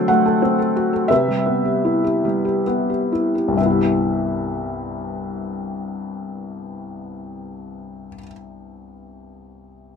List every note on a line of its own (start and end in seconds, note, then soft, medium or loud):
0.00 1.08 D3 medium
0.00 1.07 F#3 soft
0.00 0.09 A3 soft
0.00 0.41 C4 soft
0.00 0.26 A4 soft
0.00 1.13 C5 soft
0.00 0.08 F#5 medium
0.00 0.10 G5 medium
0.08 1.07 A3 soft
0.08 0.72 F#5 medium
0.26 0.57 A4 soft
0.42 1.09 C4 soft
0.59 0.92 A4 soft
0.76 1.10 F#4 soft
0.93 1.10 A4 soft
1.08 3.54 C3 soft
1.08 2.63 B4 soft
1.08 2.62 E5 medium
1.28 2.23 G3 soft
1.46 2.65 B3 soft
1.65 2.03 G4 soft
1.85 3.11 E4 soft
2.04 2.43 G4 soft
2.25 3.54 G3 soft
2.45 2.88 G4 soft
2.67 3.55 B3 soft
2.90 3.34 G4 soft
3.12 3.57 E4 soft
3.35 3.58 G4 soft
3.48 8.08 C2 soft
3.52 8.13 G2 soft
3.57 8.17 C3 soft
3.57 8.18 E5 soft
3.61 8.22 B3 soft
3.66 8.26 E4 soft
3.70 8.31 G4 soft